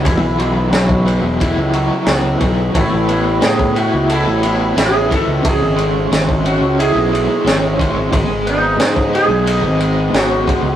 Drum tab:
RD |x-x-x-x-x-x-x-x-|x-x-x-x-x-x-x-x-|x-x-x-x-x-x-x-x-|x-x-x-x-x-x-x-x-|
SD |----o-------o---|----o-------o---|----o-------o---|----o-------o---|
BD |o----o--o-----o-|o----o--------o-|o----o--------o-|o----o--------o-|